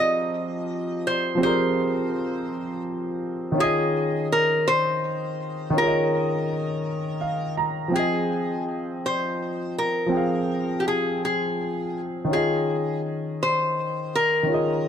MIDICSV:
0, 0, Header, 1, 3, 480
1, 0, Start_track
1, 0, Key_signature, -4, "minor"
1, 0, Tempo, 727273
1, 915, Time_signature, 6, 3, 24, 8
1, 9823, End_track
2, 0, Start_track
2, 0, Title_t, "Resonator guitar played with a steel bar"
2, 0, Program_c, 0, 25
2, 0, Note_on_c, 0, 75, 94
2, 706, Note_on_c, 0, 72, 87
2, 711, Note_off_c, 0, 75, 0
2, 937, Note_off_c, 0, 72, 0
2, 945, Note_on_c, 0, 72, 88
2, 1864, Note_off_c, 0, 72, 0
2, 2378, Note_on_c, 0, 68, 94
2, 2821, Note_off_c, 0, 68, 0
2, 2854, Note_on_c, 0, 70, 86
2, 3086, Note_on_c, 0, 72, 108
2, 3092, Note_off_c, 0, 70, 0
2, 3812, Note_off_c, 0, 72, 0
2, 3814, Note_on_c, 0, 70, 91
2, 4979, Note_off_c, 0, 70, 0
2, 5251, Note_on_c, 0, 68, 91
2, 5697, Note_off_c, 0, 68, 0
2, 5978, Note_on_c, 0, 72, 79
2, 6455, Note_off_c, 0, 72, 0
2, 6458, Note_on_c, 0, 70, 81
2, 7128, Note_on_c, 0, 67, 53
2, 7140, Note_off_c, 0, 70, 0
2, 7165, Note_off_c, 0, 67, 0
2, 7178, Note_on_c, 0, 68, 76
2, 7414, Note_off_c, 0, 68, 0
2, 7424, Note_on_c, 0, 68, 76
2, 7923, Note_off_c, 0, 68, 0
2, 8138, Note_on_c, 0, 68, 75
2, 8581, Note_off_c, 0, 68, 0
2, 8861, Note_on_c, 0, 72, 85
2, 9342, Note_off_c, 0, 72, 0
2, 9342, Note_on_c, 0, 70, 83
2, 9823, Note_off_c, 0, 70, 0
2, 9823, End_track
3, 0, Start_track
3, 0, Title_t, "Grand piano"
3, 0, Program_c, 1, 0
3, 0, Control_c, 1, 64, 127
3, 0, Note_on_c, 1, 53, 65
3, 0, Note_on_c, 1, 60, 57
3, 0, Note_on_c, 1, 67, 52
3, 0, Note_on_c, 1, 68, 49
3, 0, Note_on_c, 1, 75, 72
3, 878, Note_off_c, 1, 53, 0
3, 886, Note_off_c, 1, 60, 0
3, 891, Note_on_c, 1, 53, 56
3, 895, Note_off_c, 1, 67, 0
3, 904, Note_off_c, 1, 68, 0
3, 907, Note_on_c, 1, 60, 63
3, 913, Note_off_c, 1, 75, 0
3, 924, Note_on_c, 1, 67, 53
3, 944, Note_on_c, 1, 68, 55
3, 963, Note_on_c, 1, 70, 63
3, 2317, Note_off_c, 1, 53, 0
3, 2322, Note_on_c, 1, 51, 56
3, 2325, Note_off_c, 1, 60, 0
3, 2334, Note_off_c, 1, 67, 0
3, 2340, Note_on_c, 1, 61, 58
3, 2343, Note_off_c, 1, 68, 0
3, 2353, Note_off_c, 1, 70, 0
3, 2361, Note_on_c, 1, 65, 59
3, 2365, Control_c, 1, 64, 0
3, 2377, Note_on_c, 1, 68, 57
3, 2395, Note_on_c, 1, 75, 74
3, 2463, Control_c, 1, 64, 127
3, 3752, Note_off_c, 1, 51, 0
3, 3761, Note_off_c, 1, 61, 0
3, 3764, Note_on_c, 1, 51, 65
3, 3772, Note_off_c, 1, 65, 0
3, 3780, Note_off_c, 1, 68, 0
3, 3784, Note_on_c, 1, 61, 49
3, 3789, Note_off_c, 1, 75, 0
3, 3803, Note_on_c, 1, 65, 60
3, 3818, Note_on_c, 1, 68, 57
3, 3838, Note_on_c, 1, 73, 52
3, 3860, Note_off_c, 1, 73, 0
3, 3878, Note_on_c, 1, 75, 70
3, 4760, Note_on_c, 1, 77, 60
3, 4981, Note_off_c, 1, 77, 0
3, 4999, Note_on_c, 1, 82, 65
3, 5193, Note_off_c, 1, 51, 0
3, 5202, Note_on_c, 1, 53, 57
3, 5203, Note_off_c, 1, 61, 0
3, 5213, Note_off_c, 1, 65, 0
3, 5220, Note_off_c, 1, 68, 0
3, 5221, Note_off_c, 1, 82, 0
3, 5221, Note_on_c, 1, 60, 47
3, 5238, Note_on_c, 1, 79, 51
3, 5245, Control_c, 1, 64, 0
3, 5250, Note_off_c, 1, 75, 0
3, 5257, Note_on_c, 1, 68, 45
3, 5273, Note_on_c, 1, 75, 64
3, 5369, Control_c, 1, 64, 127
3, 6632, Note_off_c, 1, 53, 0
3, 6641, Note_on_c, 1, 53, 58
3, 6642, Note_off_c, 1, 60, 0
3, 6650, Note_off_c, 1, 79, 0
3, 6658, Note_on_c, 1, 60, 53
3, 6660, Note_off_c, 1, 68, 0
3, 6668, Note_off_c, 1, 75, 0
3, 6677, Note_on_c, 1, 79, 52
3, 6695, Note_on_c, 1, 68, 49
3, 6712, Note_on_c, 1, 77, 60
3, 8072, Note_off_c, 1, 53, 0
3, 8081, Note_off_c, 1, 60, 0
3, 8083, Note_on_c, 1, 51, 53
3, 8090, Note_off_c, 1, 79, 0
3, 8099, Note_off_c, 1, 68, 0
3, 8102, Note_on_c, 1, 61, 49
3, 8107, Note_off_c, 1, 77, 0
3, 8121, Note_on_c, 1, 65, 54
3, 8125, Control_c, 1, 64, 0
3, 8136, Note_on_c, 1, 68, 51
3, 8155, Note_on_c, 1, 75, 59
3, 8259, Control_c, 1, 64, 127
3, 9513, Note_off_c, 1, 51, 0
3, 9522, Note_off_c, 1, 61, 0
3, 9525, Note_on_c, 1, 51, 52
3, 9532, Note_off_c, 1, 65, 0
3, 9539, Note_off_c, 1, 68, 0
3, 9542, Note_on_c, 1, 61, 49
3, 9549, Note_off_c, 1, 75, 0
3, 9558, Note_on_c, 1, 65, 54
3, 9578, Note_on_c, 1, 68, 51
3, 9597, Note_on_c, 1, 75, 65
3, 9823, Note_off_c, 1, 51, 0
3, 9823, Note_off_c, 1, 61, 0
3, 9823, Note_off_c, 1, 65, 0
3, 9823, Note_off_c, 1, 68, 0
3, 9823, Note_off_c, 1, 75, 0
3, 9823, End_track
0, 0, End_of_file